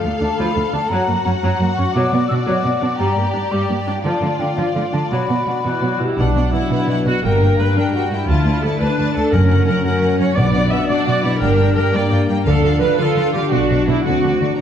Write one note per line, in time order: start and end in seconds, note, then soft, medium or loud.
0.00 0.90 A4 soft
0.00 0.19 F5 soft
0.00 0.91 F5 soft
0.04 0.11 D2 soft
0.04 0.11 A3 soft
0.21 0.28 D2 soft
0.21 0.28 D4 soft
0.21 0.39 A5 soft
0.38 0.46 D2 soft
0.38 0.55 F3 soft
0.38 0.73 B5 soft
0.55 0.63 D2 soft
0.55 0.62 A3 soft
0.73 0.80 D2 soft
0.73 0.80 D4 soft
0.73 0.91 A5 soft
0.89 0.97 F#2 soft
0.89 1.07 F#3 soft
0.89 2.99 F#4 soft
0.89 1.94 F#5 soft
0.89 1.24 A#5 medium
1.07 1.15 F#2 soft
1.07 1.14 A#3 soft
1.24 1.32 F#2 soft
1.24 1.32 C#4 soft
1.24 1.30 A#5 soft
1.42 1.49 F#2 soft
1.42 1.59 F#3 soft
1.42 1.76 A#5 medium
1.60 1.67 F#2 soft
1.60 1.68 A#3 soft
1.76 1.85 F#2 soft
1.76 1.85 C#4 soft
1.76 1.94 C#6 medium
1.94 2.02 B2 soft
1.94 2.11 F#3 soft
1.94 4.04 D5 soft
1.94 2.28 D6 medium
2.13 2.20 B2 soft
2.13 2.20 B3 soft
2.28 2.38 B2 soft
2.28 2.38 D4 soft
2.28 2.34 E6 soft
2.46 2.55 B2 soft
2.46 2.63 F#3 soft
2.46 2.98 D6 medium
2.64 2.72 B2 soft
2.64 2.71 B3 soft
2.82 2.89 B2 soft
2.82 2.89 D4 soft
2.98 3.07 G2 soft
2.98 3.16 G3 soft
2.98 4.04 G4 soft
2.98 3.33 A#5 medium
3.17 3.24 G2 soft
3.17 3.24 A#3 soft
3.33 3.42 G2 soft
3.33 3.41 D4 soft
3.33 3.53 A#5 soft
3.52 3.59 G2 soft
3.52 3.68 G3 soft
3.52 3.69 D6 soft
3.69 3.76 G2 soft
3.69 3.76 A#3 soft
3.87 3.94 G2 soft
3.87 3.94 D4 soft
4.04 4.11 D3 soft
4.04 4.21 F3 soft
4.04 5.09 F4 soft
4.04 5.97 D5 soft
4.04 4.41 A5 soft
4.21 4.28 D3 soft
4.21 4.29 A3 soft
4.39 4.47 D3 soft
4.39 4.46 D4 soft
4.39 4.58 G5 soft
4.57 4.65 D3 soft
4.57 4.74 F3 soft
4.57 4.95 F5 soft
4.75 4.82 D3 soft
4.75 4.82 A3 soft
4.92 5.00 D3 soft
4.92 5.00 D4 soft
4.92 5.11 A5 soft
5.11 5.19 B2 soft
5.11 5.28 F#3 soft
5.11 6.01 F#4 soft
5.11 5.99 B5 soft
5.29 5.36 B2 soft
5.29 5.36 B3 soft
5.47 5.54 B2 soft
5.47 5.54 D4 soft
5.64 5.72 B2 soft
5.64 5.81 E3 soft
5.64 5.98 F#4 soft
5.82 5.89 B2 soft
5.82 6.01 F#3 soft
6.00 6.07 B2 soft
6.00 6.18 G3 soft
6.00 6.18 E4 soft
6.17 6.35 B1 soft
6.17 6.25 B2 soft
6.17 7.26 B2 soft
6.17 7.20 F#3 soft
6.17 6.53 D4 soft
6.17 8.25 D4 soft
6.17 6.35 F#5 soft
6.35 6.43 B2 soft
6.35 7.41 D4 soft
6.35 6.53 F#5 soft
6.53 6.60 B2 soft
6.53 7.05 E4 soft
6.53 6.88 D5 soft
6.53 6.71 F#5 soft
6.71 6.78 B2 soft
6.71 7.20 B3 soft
6.71 7.06 F#4 soft
6.71 6.89 F#5 soft
6.88 6.95 B2 soft
6.88 7.59 D5 soft
6.88 7.06 F#5 soft
7.05 7.13 B2 soft
7.05 7.24 F#4 soft
7.05 7.24 F#5 soft
7.24 7.40 G1 soft
7.24 7.31 G2 soft
7.24 8.30 G2 soft
7.24 8.29 G3 soft
7.24 7.75 A#3 soft
7.24 7.58 A#4 medium
7.24 7.41 G5 soft
7.41 7.48 G2 soft
7.41 8.47 D4 soft
7.41 7.58 G5 soft
7.58 7.65 G2 soft
7.58 7.77 B4 medium
7.58 7.94 D5 soft
7.58 7.76 G5 soft
7.76 7.83 G2 soft
7.76 7.94 D4 soft
7.76 8.12 G4 soft
7.76 7.94 A#4 medium
7.76 7.93 G5 soft
7.93 8.00 G2 soft
7.93 8.12 F#4 soft
7.93 8.64 D5 soft
7.93 8.11 G5 soft
8.11 8.18 G2 soft
8.11 8.83 E4 soft
8.11 8.31 G4 soft
8.11 8.29 G5 soft
8.28 8.45 D2 soft
8.28 8.36 D2 soft
8.28 9.35 D3 soft
8.28 9.32 A3 soft
8.28 9.32 D4 soft
8.28 8.61 F4 soft
8.28 8.46 A5 soft
8.46 8.53 D2 soft
8.46 9.35 D4 soft
8.46 8.63 A5 soft
8.63 8.71 D2 soft
8.63 8.81 A4 soft
8.63 8.99 D5 soft
8.63 8.79 A5 soft
8.80 8.88 D2 soft
8.80 9.34 D4 soft
8.80 9.16 A4 soft
8.80 9.15 B4 soft
8.80 8.97 A5 soft
8.98 9.05 D2 soft
8.98 9.36 D5 soft
8.98 9.15 A5 soft
9.15 9.23 D2 soft
9.15 9.33 A4 soft
9.15 9.36 A4 soft
9.15 9.33 A5 soft
9.32 9.49 F#1 soft
9.32 9.81 F#2 soft
9.32 9.40 F#2 soft
9.32 10.39 F#2 soft
9.32 11.42 F#3 soft
9.32 9.83 C#4 soft
9.32 10.38 C#4 soft
9.32 9.67 A#4 medium
9.32 9.48 F#5 soft
9.49 9.58 F#2 soft
9.49 10.39 C#4 soft
9.49 9.66 F#5 soft
9.67 9.75 F#2 soft
9.67 9.85 A#4 medium
9.67 10.02 C#5 soft
9.67 9.84 F#5 soft
9.84 9.92 F#2 soft
9.84 10.36 C#4 soft
9.84 10.20 F#4 soft
9.84 10.20 A#4 medium
9.84 10.01 F#5 soft
10.02 10.09 F#2 soft
10.02 10.39 C#5 soft
10.02 10.19 F#5 soft
10.19 10.26 F#2 soft
10.19 11.23 F#4 soft
10.19 10.37 C#5 medium
10.19 10.36 F#5 soft
10.37 10.53 B1 soft
10.37 10.86 B2 soft
10.37 10.44 B2 soft
10.37 11.43 B2 soft
10.37 10.89 B3 soft
10.37 12.42 D4 soft
10.37 10.72 D5 medium
10.37 10.53 F#5 soft
10.54 10.61 B2 soft
10.54 11.59 D4 soft
10.54 10.70 F#5 soft
10.71 10.79 B2 soft
10.71 11.06 B4 soft
10.71 10.89 E5 medium
10.71 10.89 F#5 soft
10.89 10.96 B2 soft
10.89 11.06 D4 soft
10.89 11.40 D5 medium
10.89 11.76 D5 soft
10.89 11.06 F#5 soft
11.06 11.14 B2 soft
11.06 11.24 F#4 soft
11.06 11.43 B4 soft
11.06 11.23 F#5 soft
11.23 11.31 B2 soft
11.23 11.41 E4 soft
11.23 11.43 F#4 soft
11.23 11.41 F#5 soft
11.41 11.58 G1 soft
11.41 11.49 G2 soft
11.41 12.48 G2 soft
11.41 12.44 G3 soft
11.41 11.93 D4 soft
11.41 11.74 A#4 medium
11.41 11.56 G5 soft
11.57 11.66 G2 soft
11.57 12.62 D4 soft
11.57 11.74 G5 soft
11.75 11.83 G2 soft
11.75 11.93 A#4 medium
11.75 12.11 D5 soft
11.75 11.91 G5 soft
11.92 12.01 G2 soft
11.92 12.47 A#3 soft
11.92 12.29 G4 soft
11.92 12.11 D5 medium
11.92 12.09 G5 soft
12.10 12.18 G2 soft
12.10 12.79 D5 soft
12.10 12.27 G5 soft
12.28 12.36 G2 soft
12.28 12.48 G4 soft
12.28 12.45 G5 soft
12.46 12.62 D2 soft
12.46 12.53 D3 soft
12.46 13.53 D3 soft
12.46 13.36 F3 soft
12.46 14.03 D4 soft
12.46 12.99 D4 soft
12.46 12.78 A4 medium
12.46 12.63 F5 soft
12.63 12.70 D3 soft
12.63 13.68 D4 soft
12.63 12.79 F5 soft
12.80 12.87 D3 soft
12.80 12.98 B4 medium
12.80 13.14 D5 soft
12.80 12.96 F5 soft
12.98 13.05 D3 soft
12.98 13.33 F4 soft
12.98 13.51 F4 soft
12.98 13.34 A4 medium
12.98 13.15 F5 soft
13.16 13.23 D3 soft
13.16 13.87 D5 soft
13.16 13.33 F5 soft
13.34 13.42 D3 soft
13.34 13.53 F4 soft
13.34 13.51 G4 medium
13.34 13.52 F5 soft
13.51 13.68 B1 soft
13.51 14.07 B2 soft
13.51 13.59 B2 soft
13.51 14.05 F#3 soft
13.51 14.05 D4 soft
13.51 13.88 F#4 medium
13.51 13.70 D5 soft
13.69 13.78 B2 soft
13.69 14.40 D4 soft
13.69 13.87 D5 soft
13.87 13.95 B2 soft
13.87 14.06 E4 soft
13.87 14.61 F#4 soft
13.87 14.40 D5 soft
13.87 14.05 D5 soft
14.04 14.23 D2 soft
14.04 14.61 D3 soft
14.04 14.13 D3 soft
14.04 14.42 A3 soft
14.04 14.42 C4 soft
14.04 14.31 F#4 soft
14.04 14.59 F#4 soft
14.04 14.23 D5 soft
14.23 14.31 D3 soft
14.23 14.60 C4 soft
14.23 14.40 D5 soft
14.41 14.49 D3 soft
14.41 14.61 D4 soft
14.41 14.59 D5 soft
14.41 14.61 D5 soft